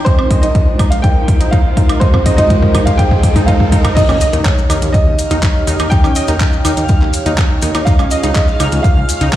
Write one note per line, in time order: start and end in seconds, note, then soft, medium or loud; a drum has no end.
0.00 riser medium
0.05 3.93 G#3 medium
0.05 3.93 D#4 medium
0.05 0.13 D#4 medium
0.05 3.93 F4 medium
0.05 3.93 A#4 medium
0.05 0.43 C5 loud
0.05 3.93 C5 medium
0.05 kick loud
0.05 closed hi-hat medium
0.19 0.28 C4 medium
0.19 high woodblock medium
0.31 0.37 D#5 medium
0.31 kick loud
0.31 open hi-hat medium
0.42 0.49 D#4 medium
0.42 0.93 D#5 medium
0.42 closed hi-hat medium
0.55 kick loud
0.55 closed hi-hat medium
0.79 0.83 D#4 medium
0.79 kick loud
0.79 open hi-hat loud
0.79 high woodblock medium
0.90 0.95 F5 medium
0.90 closed hi-hat medium
1.02 1.53 G5 loud
1.02 kick loud
1.02 closed hi-hat medium
1.28 kick loud
1.28 open hi-hat loud
1.41 1.47 D#4 medium
1.41 closed hi-hat medium
1.51 1.59 D#4 medium
1.51 2.02 F5 medium
1.51 kick loud
1.51 closed hi-hat medium
1.77 1.83 D#4 medium
1.77 kick loud
1.77 open hi-hat medium
1.89 1.96 D#4 medium
1.89 closed hi-hat medium
1.89 high woodblock medium
2.00 2.08 D#4 medium
2.00 2.39 C5 loud
2.00 kick loud
2.00 closed hi-hat medium
2.14 2.23 C4 medium
2.14 kick medium
2.14 high woodblock medium
2.26 2.32 D#5 medium
2.26 kick loud
2.26 open hi-hat loud
2.37 2.44 D#4 medium
2.37 2.88 D#5 loud
2.37 kick medium
2.37 closed hi-hat medium
2.50 kick loud
2.50 closed hi-hat medium
2.62 kick medium
2.75 2.78 D#4 medium
2.75 kick loud
2.75 open hi-hat loud
2.75 high woodblock medium
2.85 2.99 F5 medium
2.85 kick medium
2.85 closed hi-hat medium
2.98 3.49 G5 loud
2.98 kick loud
2.98 closed hi-hat medium
3.11 kick medium
3.23 kick loud
3.23 open hi-hat loud
3.36 3.42 D#4 medium
3.36 kick medium
3.36 open hi-hat medium
3.46 3.54 D#4 medium
3.46 3.92 F5 medium
3.46 kick loud
3.46 closed hi-hat medium
3.60 kick medium
3.72 3.79 D#4 medium
3.72 kick loud
3.72 open hi-hat loud
3.85 3.91 D#4 medium
3.85 kick medium
3.85 closed hi-hat medium
3.85 high woodblock medium
3.95 7.83 D#4 medium
3.95 4.03 D#4 medium
3.95 7.83 G4 medium
3.95 9.36 C#5 medium
3.95 4.46 D#5 loud
3.95 9.36 F5 medium
3.95 9.36 F6 medium
3.95 kick loud
3.95 closed hi-hat medium
3.95 crash loud
3.95 impact medium
3.95 maracas medium
4.09 4.17 D#2 medium
4.09 4.18 C#4 medium
4.09 high woodblock medium
4.09 maracas soft
4.21 4.27 D#5 medium
4.21 open hi-hat loud
4.21 maracas medium
4.33 4.41 D#2 medium
4.33 4.40 D#4 medium
4.33 closed hi-hat medium
4.33 maracas soft
4.44 4.95 C#5 medium
4.44 kick loud
4.44 clap loud
4.44 closed hi-hat medium
4.44 maracas soft
4.58 maracas soft
4.70 4.78 D#2 loud
4.70 4.74 D#4 medium
4.70 open hi-hat loud
4.70 high woodblock medium
4.70 maracas medium
4.82 4.90 D#2 medium
4.82 closed hi-hat medium
4.82 maracas soft
4.93 5.94 D#5 loud
4.93 kick loud
4.93 closed hi-hat medium
4.93 maracas medium
5.06 5.14 D#2 medium
5.19 open hi-hat loud
5.19 maracas loud
5.30 5.39 D#2 medium
5.30 5.37 D#4 medium
5.30 closed hi-hat medium
5.30 maracas soft
5.43 5.49 D#4 medium
5.43 kick loud
5.43 clap loud
5.43 closed hi-hat medium
5.43 maracas soft
5.67 5.75 D#2 loud
5.67 5.74 D#4 medium
5.67 open hi-hat loud
5.67 maracas medium
5.79 5.88 D#2 medium
5.79 5.86 D#4 medium
5.79 closed hi-hat medium
5.79 high woodblock medium
5.79 maracas soft
5.90 5.98 D#4 medium
5.90 7.58 G5 loud
5.90 kick loud
5.90 closed hi-hat medium
5.90 maracas medium
6.04 6.12 D#2 medium
6.04 6.13 C#4 medium
6.04 high woodblock medium
6.04 maracas soft
6.15 6.22 D#5 medium
6.15 open hi-hat loud
6.15 maracas medium
6.28 6.36 D#2 medium
6.28 6.35 D#4 medium
6.28 closed hi-hat medium
6.28 maracas soft
6.40 kick loud
6.40 clap loud
6.40 closed hi-hat medium
6.40 maracas medium
6.53 maracas soft
6.65 6.73 D#2 loud
6.65 6.69 D#4 medium
6.65 open hi-hat loud
6.65 high woodblock medium
6.65 maracas loud
6.77 6.85 D#2 medium
6.77 closed hi-hat medium
6.77 maracas soft
6.88 kick loud
6.88 closed hi-hat medium
6.88 maracas medium
7.02 7.10 D#2 medium
7.02 clap soft
7.13 open hi-hat loud
7.13 maracas medium
7.26 7.34 D#2 medium
7.26 7.32 D#4 medium
7.26 closed hi-hat medium
7.26 maracas soft
7.38 7.44 D#4 medium
7.38 kick loud
7.38 clap loud
7.38 closed hi-hat medium
7.38 maracas medium
7.62 7.71 D#2 loud
7.62 7.69 D#4 medium
7.62 open hi-hat loud
7.62 maracas loud
7.75 7.83 D#2 medium
7.75 7.81 D#4 medium
7.75 closed hi-hat medium
7.75 high woodblock medium
7.75 maracas soft
7.85 7.93 D#4 medium
7.85 9.36 F4 medium
7.85 9.36 G#4 medium
7.85 8.36 F5 loud
7.85 kick loud
7.85 closed hi-hat medium
7.85 maracas medium
7.99 8.07 C#2 medium
7.99 8.09 C#4 medium
7.99 high woodblock medium
7.99 maracas soft
8.11 8.18 D#5 medium
8.11 open hi-hat loud
8.11 maracas loud
8.23 8.32 C#2 medium
8.23 8.30 D#4 medium
8.23 closed hi-hat medium
8.23 maracas soft
8.34 8.85 D#5 medium
8.34 kick loud
8.34 clap loud
8.34 closed hi-hat medium
8.34 maracas medium
8.48 maracas soft
8.60 8.68 C#2 loud
8.60 8.64 D#4 medium
8.60 open hi-hat loud
8.60 high woodblock medium
8.60 maracas medium
8.72 8.80 C#2 medium
8.72 closed hi-hat medium
8.72 maracas soft
8.83 9.36 F5 loud
8.83 kick loud
8.83 closed hi-hat medium
8.83 maracas medium
8.97 9.05 C#2 medium
9.09 open hi-hat loud
9.09 maracas loud
9.21 9.29 C#2 medium
9.21 9.27 D#4 medium
9.21 closed hi-hat medium
9.21 maracas soft
9.33 kick loud
9.33 clap loud
9.33 closed hi-hat medium